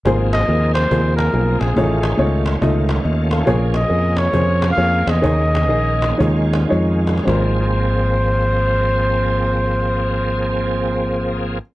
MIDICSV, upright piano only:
0, 0, Header, 1, 2, 480
1, 0, Start_track
1, 0, Key_signature, -4, "major"
1, 0, Tempo, 427960
1, 59, Time_signature, 4, 2, 24, 8
1, 4859, Tempo, 457317
1, 6299, Tempo, 505476
1, 7259, Tempo, 548948
1, 7739, Tempo, 567644
1, 11525, End_track
2, 0, Start_track
2, 0, Title_t, "Upright piano"
2, 0, Program_c, 0, 0
2, 57, Note_on_c, 0, 58, 92
2, 67, Note_on_c, 0, 44, 56
2, 69, Note_on_c, 0, 65, 76
2, 71, Note_on_c, 0, 68, 85
2, 80, Note_on_c, 0, 72, 98
2, 404, Note_off_c, 0, 58, 0
2, 411, Note_off_c, 0, 65, 0
2, 411, Note_off_c, 0, 68, 0
2, 416, Note_off_c, 0, 72, 0
2, 529, Note_on_c, 0, 58, 66
2, 537, Note_on_c, 0, 65, 57
2, 545, Note_on_c, 0, 68, 55
2, 549, Note_on_c, 0, 70, 65
2, 808, Note_off_c, 0, 44, 0
2, 881, Note_off_c, 0, 58, 0
2, 884, Note_off_c, 0, 65, 0
2, 888, Note_off_c, 0, 68, 0
2, 891, Note_off_c, 0, 70, 0
2, 1012, Note_on_c, 0, 58, 58
2, 1017, Note_on_c, 0, 65, 55
2, 1027, Note_on_c, 0, 68, 60
2, 1037, Note_on_c, 0, 72, 68
2, 1362, Note_off_c, 0, 58, 0
2, 1364, Note_off_c, 0, 65, 0
2, 1369, Note_off_c, 0, 68, 0
2, 1374, Note_off_c, 0, 72, 0
2, 1491, Note_on_c, 0, 58, 63
2, 1494, Note_on_c, 0, 65, 55
2, 1501, Note_on_c, 0, 68, 57
2, 1510, Note_on_c, 0, 70, 71
2, 1841, Note_off_c, 0, 58, 0
2, 1842, Note_off_c, 0, 65, 0
2, 1846, Note_off_c, 0, 68, 0
2, 1851, Note_off_c, 0, 70, 0
2, 1970, Note_on_c, 0, 57, 72
2, 1977, Note_on_c, 0, 45, 55
2, 1977, Note_on_c, 0, 63, 70
2, 1986, Note_on_c, 0, 65, 70
2, 1991, Note_on_c, 0, 73, 79
2, 2320, Note_off_c, 0, 57, 0
2, 2324, Note_off_c, 0, 63, 0
2, 2328, Note_off_c, 0, 65, 0
2, 2330, Note_off_c, 0, 73, 0
2, 2437, Note_on_c, 0, 57, 84
2, 2446, Note_on_c, 0, 63, 72
2, 2451, Note_on_c, 0, 65, 67
2, 2456, Note_on_c, 0, 73, 92
2, 2722, Note_off_c, 0, 45, 0
2, 2793, Note_off_c, 0, 57, 0
2, 2797, Note_off_c, 0, 63, 0
2, 2800, Note_off_c, 0, 65, 0
2, 2802, Note_off_c, 0, 73, 0
2, 2930, Note_on_c, 0, 63, 67
2, 2931, Note_on_c, 0, 57, 71
2, 2939, Note_on_c, 0, 75, 83
2, 2944, Note_on_c, 0, 65, 67
2, 3279, Note_off_c, 0, 57, 0
2, 3279, Note_off_c, 0, 63, 0
2, 3283, Note_off_c, 0, 75, 0
2, 3285, Note_off_c, 0, 65, 0
2, 3410, Note_on_c, 0, 75, 58
2, 3706, Note_off_c, 0, 75, 0
2, 3718, Note_on_c, 0, 77, 58
2, 3731, Note_on_c, 0, 69, 52
2, 3877, Note_on_c, 0, 58, 92
2, 3880, Note_on_c, 0, 65, 81
2, 3889, Note_on_c, 0, 46, 67
2, 3893, Note_on_c, 0, 68, 85
2, 3896, Note_on_c, 0, 73, 98
2, 4176, Note_off_c, 0, 77, 0
2, 4183, Note_off_c, 0, 69, 0
2, 4231, Note_off_c, 0, 58, 0
2, 4233, Note_off_c, 0, 65, 0
2, 4239, Note_off_c, 0, 68, 0
2, 4240, Note_off_c, 0, 73, 0
2, 4351, Note_on_c, 0, 58, 61
2, 4360, Note_on_c, 0, 65, 58
2, 4369, Note_on_c, 0, 68, 61
2, 4370, Note_on_c, 0, 75, 75
2, 4639, Note_off_c, 0, 46, 0
2, 4712, Note_off_c, 0, 58, 0
2, 4717, Note_off_c, 0, 65, 0
2, 4721, Note_off_c, 0, 68, 0
2, 4722, Note_off_c, 0, 75, 0
2, 4845, Note_on_c, 0, 58, 61
2, 4855, Note_on_c, 0, 65, 60
2, 4865, Note_on_c, 0, 68, 61
2, 4870, Note_on_c, 0, 72, 75
2, 5187, Note_off_c, 0, 58, 0
2, 5192, Note_off_c, 0, 65, 0
2, 5197, Note_off_c, 0, 68, 0
2, 5199, Note_off_c, 0, 72, 0
2, 5311, Note_on_c, 0, 58, 71
2, 5317, Note_on_c, 0, 65, 63
2, 5324, Note_on_c, 0, 73, 77
2, 5326, Note_on_c, 0, 68, 62
2, 5662, Note_off_c, 0, 58, 0
2, 5664, Note_off_c, 0, 65, 0
2, 5668, Note_off_c, 0, 73, 0
2, 5669, Note_off_c, 0, 68, 0
2, 5773, Note_on_c, 0, 58, 72
2, 5784, Note_on_c, 0, 63, 69
2, 5785, Note_on_c, 0, 51, 51
2, 5792, Note_on_c, 0, 68, 72
2, 5799, Note_on_c, 0, 73, 80
2, 6144, Note_off_c, 0, 58, 0
2, 6150, Note_off_c, 0, 63, 0
2, 6153, Note_off_c, 0, 68, 0
2, 6157, Note_off_c, 0, 73, 0
2, 6272, Note_on_c, 0, 58, 71
2, 6283, Note_on_c, 0, 68, 73
2, 6284, Note_on_c, 0, 63, 68
2, 6295, Note_on_c, 0, 75, 85
2, 6553, Note_off_c, 0, 51, 0
2, 6623, Note_off_c, 0, 58, 0
2, 6627, Note_off_c, 0, 68, 0
2, 6628, Note_off_c, 0, 63, 0
2, 6633, Note_off_c, 0, 75, 0
2, 6743, Note_on_c, 0, 56, 68
2, 6747, Note_on_c, 0, 51, 61
2, 6748, Note_on_c, 0, 63, 70
2, 6752, Note_on_c, 0, 65, 60
2, 6758, Note_on_c, 0, 73, 75
2, 7108, Note_off_c, 0, 56, 0
2, 7110, Note_off_c, 0, 63, 0
2, 7112, Note_off_c, 0, 65, 0
2, 7115, Note_off_c, 0, 73, 0
2, 7233, Note_on_c, 0, 56, 72
2, 7233, Note_on_c, 0, 63, 71
2, 7241, Note_on_c, 0, 65, 63
2, 7247, Note_on_c, 0, 73, 80
2, 7522, Note_off_c, 0, 51, 0
2, 7590, Note_off_c, 0, 56, 0
2, 7591, Note_off_c, 0, 63, 0
2, 7594, Note_off_c, 0, 65, 0
2, 7597, Note_off_c, 0, 73, 0
2, 7708, Note_on_c, 0, 56, 65
2, 7726, Note_on_c, 0, 60, 61
2, 7729, Note_on_c, 0, 32, 62
2, 7740, Note_on_c, 0, 65, 62
2, 7759, Note_on_c, 0, 70, 72
2, 11354, Note_off_c, 0, 56, 0
2, 11371, Note_off_c, 0, 60, 0
2, 11374, Note_off_c, 0, 32, 0
2, 11385, Note_off_c, 0, 65, 0
2, 11404, Note_off_c, 0, 70, 0
2, 11525, End_track
0, 0, End_of_file